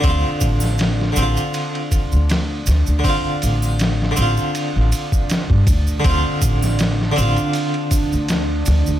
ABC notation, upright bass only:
X:1
M:4/4
L:1/16
Q:"Swing 16ths" 1/4=80
K:Dm
V:1 name="Upright bass" clef=bass
D,, z A,,,4 A,,, z4 D,,3 D,, D,, | z2 A,,,4 A,,, z2 A,,, z3 G,, D,,2 | D,, z A,,,4 A,,, z4 D,,3 D,, D,, |]